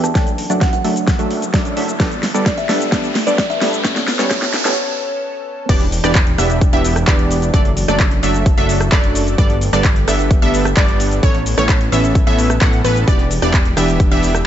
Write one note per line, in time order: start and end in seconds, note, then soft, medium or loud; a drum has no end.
0.00 0.13 E2 loud
0.00 0.14 E3 medium
0.00 1.96 D4 medium
0.00 0.13 G4 medium
0.00 0.18 A5 medium
0.00 cross-stick medium
0.00 closed hi-hat soft
0.00 riser medium
0.04 shaker medium
0.15 0.48 F#1 loud
0.15 0.31 F#3 medium
0.15 1.98 F#3 medium
0.15 0.31 A3 medium
0.15 0.31 D4 medium
0.15 1.98 A4 medium
0.15 0.31 A4 medium
0.15 0.31 D5 loud
0.15 kick loud
0.15 snare medium
0.15 closed hi-hat medium
0.15 shaker medium
0.27 closed hi-hat soft
0.27 shaker soft
0.38 open hi-hat loud
0.50 0.82 F#1 loud
0.50 0.65 F#3 medium
0.50 0.65 A3 medium
0.50 0.65 D4 medium
0.50 0.65 A4 medium
0.50 0.65 D5 loud
0.50 0.57 F#5 medium
0.50 closed hi-hat soft
0.50 shaker medium
0.61 0.69 F#5 medium
0.61 kick loud
0.61 snare medium
0.61 closed hi-hat medium
0.61 shaker medium
0.73 1.08 F#5 medium
0.73 closed hi-hat soft
0.73 shaker soft
0.84 1.17 F#1 loud
0.84 1.16 F#3 medium
0.84 1.16 A3 medium
0.84 1.16 D4 medium
0.84 1.16 A4 medium
0.84 1.16 E5 medium
0.84 open hi-hat loud
0.96 closed hi-hat soft
0.96 shaker medium
1.08 kick loud
1.08 snare medium
1.08 closed hi-hat medium
1.08 shaker medium
1.19 1.51 F#1 loud
1.19 1.44 F#3 loud
1.19 1.44 A3 medium
1.19 1.44 D4 medium
1.19 1.44 A4 loud
1.19 1.44 E5 loud
1.19 closed hi-hat soft
1.19 shaker soft
1.31 open hi-hat loud
1.42 closed hi-hat soft
1.42 shaker medium
1.54 1.75 F#2 loud
1.54 1.74 F#3 loud
1.54 1.74 A3 medium
1.54 1.74 D4 medium
1.54 1.74 A4 medium
1.54 1.74 D5 loud
1.54 kick loud
1.54 snare medium
1.54 closed hi-hat medium
1.54 shaker medium
1.65 closed hi-hat soft
1.65 shaker soft
1.77 1.98 F#1 loud
1.77 1.92 F#3 medium
1.77 1.92 A3 medium
1.77 1.92 D4 medium
1.77 1.92 A4 medium
1.77 1.92 E5 medium
1.77 open hi-hat loud
1.88 closed hi-hat soft
1.88 shaker medium
2.00 2.32 G1 medium
2.00 2.15 G3 medium
2.00 3.83 A3 medium
2.00 2.15 B3 medium
2.00 5.65 B3 medium
2.00 2.15 D4 medium
2.00 3.83 G4 loud
2.00 2.15 A4 medium
2.00 2.15 D5 loud
2.00 kick loud
2.00 snare medium
2.00 closed hi-hat medium
2.00 shaker medium
2.11 closed hi-hat soft
2.11 shaker soft
2.23 snare medium
2.23 open hi-hat loud
2.34 2.67 G1 loud
2.34 2.50 G3 medium
2.34 2.50 B3 medium
2.34 2.50 D4 medium
2.34 2.50 A4 medium
2.34 2.50 D5 medium
2.34 2.42 D5 medium
2.34 closed hi-hat soft
2.34 shaker medium
2.46 2.54 D5 medium
2.46 kick loud
2.46 snare medium
2.46 closed hi-hat medium
2.46 shaker medium
2.58 2.72 E5 medium
2.58 closed hi-hat soft
2.58 shaker soft
2.69 2.90 G1 loud
2.69 2.90 G3 medium
2.69 2.90 B3 medium
2.69 2.90 D4 medium
2.69 2.90 A4 medium
2.69 2.90 E5 medium
2.69 snare medium
2.69 open hi-hat loud
2.81 closed hi-hat soft
2.81 shaker medium
2.92 3.25 G1 loud
2.92 3.08 G3 medium
2.92 3.08 B3 medium
2.92 3.08 D4 medium
2.92 3.08 A4 medium
2.92 3.08 D5 medium
2.92 kick loud
2.92 snare medium
2.92 closed hi-hat medium
2.92 shaker medium
3.04 closed hi-hat soft
3.04 shaker soft
3.15 snare medium
3.15 open hi-hat loud
3.27 3.59 G1 medium
3.27 3.42 G3 medium
3.27 3.42 B3 medium
3.27 3.42 D4 medium
3.27 3.42 A4 medium
3.27 3.42 D5 medium
3.27 3.34 D5 medium
3.27 closed hi-hat soft
3.27 shaker medium
3.38 3.46 D5 medium
3.38 kick loud
3.38 snare medium
3.38 closed hi-hat medium
3.38 shaker soft
3.50 3.65 E5 medium
3.50 closed hi-hat soft
3.50 shaker soft
3.61 3.82 G1 loud
3.61 3.83 G3 medium
3.61 3.83 B3 medium
3.61 3.83 D4 medium
3.61 3.83 A4 medium
3.61 3.83 E5 medium
3.61 snare medium
3.61 open hi-hat loud
3.73 closed hi-hat soft
3.73 shaker medium
3.84 4.17 A1 loud
3.84 4.00 G3 medium
3.84 4.00 B3 medium
3.84 4.00 C#4 medium
3.84 5.67 C#4 medium
3.84 4.00 A4 medium
3.84 5.67 A4 medium
3.84 4.00 C#5 loud
3.84 kick loud
3.84 snare medium
3.84 closed hi-hat medium
3.84 shaker medium
3.96 snare medium
3.96 closed hi-hat soft
3.96 shaker soft
4.08 snare medium
4.08 open hi-hat loud
4.19 4.28 A1 loud
4.19 4.29 G3 medium
4.19 4.29 B3 medium
4.19 4.29 C#4 medium
4.19 4.29 A4 medium
4.19 4.27 C#5 medium
4.19 4.29 C#5 medium
4.19 snare medium
4.19 closed hi-hat soft
4.19 shaker medium
4.31 4.63 A1 loud
4.31 4.46 G3 medium
4.31 4.46 B3 medium
4.31 4.46 C#4 medium
4.31 4.46 A4 medium
4.31 4.46 C#5 loud
4.31 kick loud
4.31 snare loud
4.31 closed hi-hat medium
4.31 shaker medium
4.42 snare medium
4.42 closed hi-hat soft
4.42 shaker soft
4.54 snare loud
4.54 open hi-hat loud
4.65 4.75 A1 loud
4.65 4.75 G3 medium
4.65 4.75 B3 medium
4.65 4.75 C#4 medium
4.65 4.75 A4 medium
4.65 4.73 C#5 medium
4.65 4.75 C#5 medium
4.65 snare medium
4.65 closed hi-hat soft
4.65 shaker medium
5.69 6.01 E1 loud
5.69 5.85 E3 loud
5.69 7.52 E3 medium
5.69 5.85 B3 medium
5.69 5.85 D4 medium
5.69 7.52 D4 medium
5.69 5.85 G4 medium
5.69 7.52 G4 loud
5.69 5.85 D5 loud
5.69 kick loud
5.69 closed hi-hat medium
5.69 crash loud
5.69 shaker soft
5.81 closed hi-hat soft
5.92 open hi-hat loud
5.92 shaker medium
6.04 6.36 E1 loud
6.04 6.19 E3 medium
6.04 6.19 B3 medium
6.04 6.19 D4 medium
6.04 6.19 G4 medium
6.04 6.19 D5 medium
6.04 6.19 D5 loud
6.04 cross-stick medium
6.04 closed hi-hat soft
6.04 shaker soft
6.15 kick loud
6.15 clap loud
6.15 closed hi-hat medium
6.15 shaker soft
6.27 closed hi-hat soft
6.38 6.71 E1 loud
6.38 6.70 E3 medium
6.38 6.70 B3 medium
6.38 6.70 D4 medium
6.38 6.70 G4 medium
6.38 6.70 E5 medium
6.38 cross-stick medium
6.38 open hi-hat loud
6.38 shaker medium
6.50 closed hi-hat soft
6.50 shaker soft
6.61 kick loud
6.61 closed hi-hat medium
6.61 shaker soft
6.73 7.05 E1 loud
6.73 6.98 E3 loud
6.73 6.98 B3 medium
6.73 6.98 D4 medium
6.73 6.98 G4 medium
6.73 6.98 E5 loud
6.73 closed hi-hat soft
6.84 open hi-hat loud
6.84 shaker medium
6.96 cross-stick medium
6.96 closed hi-hat soft
6.96 shaker soft
7.07 7.51 E1 medium
7.07 7.51 E3 loud
7.07 7.51 B3 medium
7.07 7.51 D4 medium
7.07 7.51 G4 medium
7.07 7.51 D5 loud
7.07 kick loud
7.07 clap loud
7.07 closed hi-hat medium
7.07 shaker soft
7.19 closed hi-hat soft
7.31 open hi-hat loud
7.31 shaker medium
7.42 closed hi-hat soft
7.42 shaker soft
7.54 7.86 F#1 loud
7.54 9.37 F#3 medium
7.54 7.69 F#3 loud
7.54 7.69 A3 medium
7.54 9.37 D4 medium
7.54 7.69 D4 medium
7.54 9.37 A4 medium
7.54 7.69 A4 medium
7.54 7.69 D5 loud
7.54 kick loud
7.54 closed hi-hat medium
7.54 shaker soft
7.65 closed hi-hat soft
7.77 open hi-hat loud
7.77 shaker medium
7.88 8.21 F#1 loud
7.88 8.04 F#3 medium
7.88 8.04 A3 medium
7.88 8.04 D4 medium
7.88 8.04 A4 medium
7.88 8.04 D5 medium
7.88 8.04 D5 loud
7.88 cross-stick medium
7.88 closed hi-hat soft
7.88 shaker soft
8.00 kick loud
8.00 clap loud
8.00 closed hi-hat medium
8.00 shaker soft
8.11 closed hi-hat soft
8.23 8.55 F#1 loud
8.23 8.55 F#3 medium
8.23 8.55 A3 medium
8.23 8.55 D4 medium
8.23 8.55 A4 medium
8.23 8.55 E5 medium
8.23 open hi-hat loud
8.23 shaker medium
8.34 closed hi-hat soft
8.34 shaker soft
8.46 kick loud
8.46 closed hi-hat medium
8.46 shaker soft
8.58 8.90 F#1 loud
8.58 8.82 F#3 loud
8.58 8.82 A3 loud
8.58 8.82 D4 loud
8.58 8.82 A4 medium
8.58 8.82 E5 loud
8.58 closed hi-hat soft
8.69 open hi-hat loud
8.69 shaker medium
8.81 cross-stick medium
8.81 closed hi-hat soft
8.81 shaker soft
8.92 9.36 F#1 medium
8.92 9.36 F#3 medium
8.92 9.36 A3 medium
8.92 9.36 D4 medium
8.92 9.36 A4 medium
8.92 9.36 D5 loud
8.92 kick loud
8.92 clap loud
8.92 closed hi-hat medium
8.92 shaker soft
9.04 closed hi-hat soft
9.15 open hi-hat loud
9.15 shaker medium
9.27 closed hi-hat soft
9.27 shaker soft
9.38 9.71 G1 loud
9.38 9.54 G3 medium
9.38 11.21 A3 medium
9.38 11.21 B3 medium
9.38 9.54 B3 medium
9.38 9.54 D4 medium
9.38 11.21 G4 loud
9.38 9.54 A4 medium
9.38 9.54 D5 loud
9.38 kick loud
9.38 closed hi-hat medium
9.38 shaker soft
9.50 closed hi-hat soft
9.61 open hi-hat loud
9.61 shaker medium
9.73 10.05 G1 loud
9.73 9.88 G3 medium
9.73 9.88 B3 medium
9.73 9.88 D4 medium
9.73 9.88 A4 medium
9.73 9.88 D5 medium
9.73 9.88 D5 loud
9.73 cross-stick medium
9.73 closed hi-hat soft
9.73 shaker soft
9.84 kick loud
9.84 clap loud
9.84 closed hi-hat medium
9.84 shaker soft
9.96 closed hi-hat soft
10.08 10.40 G1 loud
10.08 10.39 G3 medium
10.08 10.39 B3 medium
10.08 10.39 D4 medium
10.08 10.39 A4 medium
10.08 10.39 E5 medium
10.08 cross-stick medium
10.08 open hi-hat loud
10.08 shaker medium
10.19 closed hi-hat soft
10.19 shaker soft
10.31 kick loud
10.31 closed hi-hat medium
10.31 shaker soft
10.42 10.75 G1 loud
10.42 10.67 G3 loud
10.42 10.67 B3 medium
10.42 10.67 D4 loud
10.42 10.67 A4 medium
10.42 10.67 E5 loud
10.42 closed hi-hat soft
10.54 open hi-hat loud
10.54 shaker medium
10.65 cross-stick medium
10.65 closed hi-hat soft
10.65 shaker soft
10.77 11.21 G1 medium
10.77 11.20 G3 loud
10.77 11.20 B3 medium
10.77 11.20 D4 medium
10.77 11.20 A4 medium
10.77 11.20 D5 loud
10.77 kick loud
10.77 clap loud
10.77 closed hi-hat medium
10.77 shaker soft
10.88 closed hi-hat soft
11.00 open hi-hat loud
11.00 shaker medium
11.12 closed hi-hat soft
11.12 shaker soft
11.23 11.55 A1 loud
11.23 11.38 E3 loud
11.23 11.38 B3 medium
11.23 13.06 B3 medium
11.23 11.38 C#4 medium
11.23 13.06 C#4 medium
11.23 11.38 A4 medium
11.23 13.06 A4 medium
11.23 11.38 C#5 loud
11.23 kick loud
11.23 closed hi-hat medium
11.23 shaker soft
11.35 closed hi-hat soft
11.46 open hi-hat loud
11.46 shaker medium
11.58 11.90 A1 loud
11.58 11.73 E3 medium
11.58 11.73 B3 medium
11.58 11.73 C#4 medium
11.58 11.73 A4 medium
11.58 11.73 C#5 medium
11.58 cross-stick medium
11.58 closed hi-hat soft
11.58 shaker soft
11.69 kick loud
11.69 clap loud
11.69 closed hi-hat medium
11.69 shaker soft
11.81 closed hi-hat soft
11.92 12.25 A1 loud
11.92 12.24 E3 medium
11.92 12.24 B3 medium
11.92 12.24 C#4 medium
11.92 12.24 A4 medium
11.92 12.24 E5 medium
11.92 open hi-hat loud
11.92 shaker medium
12.04 closed hi-hat soft
12.04 shaker soft
12.15 kick loud
12.15 closed hi-hat medium
12.15 shaker soft
12.27 12.59 A1 loud
12.27 12.52 E3 loud
12.27 12.52 B3 medium
12.27 12.52 C#4 medium
12.27 12.52 A4 medium
12.27 12.52 E5 loud
12.27 closed hi-hat soft
12.38 open hi-hat loud
12.38 shaker medium
12.50 cross-stick medium
12.50 closed hi-hat soft
12.50 shaker soft
12.61 12.82 A2 medium
12.61 12.82 E3 medium
12.61 12.82 B3 medium
12.61 12.82 C#4 medium
12.61 12.82 A4 medium
12.61 12.82 F#5 medium
12.61 kick loud
12.61 clap loud
12.61 closed hi-hat medium
12.61 shaker soft
12.73 closed hi-hat soft
12.85 13.05 A1 loud
12.85 13.04 E3 medium
12.85 13.04 B3 medium
12.85 13.04 C#4 medium
12.85 13.04 A4 medium
12.85 13.04 B4 loud
12.85 open hi-hat loud
12.85 shaker medium
12.96 closed hi-hat soft
12.96 shaker soft
13.08 13.40 E1 loud
13.08 14.47 E3 medium
13.08 13.23 E3 loud
13.08 13.23 B3 medium
13.08 14.47 D4 medium
13.08 13.23 D4 medium
13.08 14.47 G4 loud
13.08 13.23 G4 medium
13.08 13.23 D5 loud
13.08 kick loud
13.08 closed hi-hat medium
13.08 shaker soft
13.19 closed hi-hat soft
13.31 open hi-hat loud
13.31 shaker medium
13.42 13.75 E1 loud
13.42 13.58 E3 medium
13.42 13.58 B3 medium
13.42 13.58 D4 medium
13.42 13.58 G4 medium
13.42 13.58 D5 medium
13.42 cross-stick medium
13.42 closed hi-hat soft
13.42 shaker soft
13.54 kick loud
13.54 clap loud
13.54 closed hi-hat medium
13.54 shaker soft
13.65 closed hi-hat soft
13.77 14.09 E1 loud
13.77 14.09 E3 medium
13.77 14.09 B3 medium
13.77 14.09 D4 medium
13.77 14.09 G4 medium
13.77 14.09 E5 medium
13.77 cross-stick medium
13.77 open hi-hat loud
13.77 shaker medium
13.88 closed hi-hat soft
13.88 shaker soft
14.00 kick loud
14.00 closed hi-hat medium
14.00 shaker soft
14.11 14.44 E1 loud
14.11 14.36 E3 loud
14.11 14.36 B3 loud
14.11 14.36 D4 medium
14.11 14.36 G4 medium
14.11 14.36 E5 loud
14.11 closed hi-hat soft
14.23 open hi-hat loud
14.23 shaker medium
14.35 cross-stick medium
14.35 closed hi-hat soft
14.35 shaker soft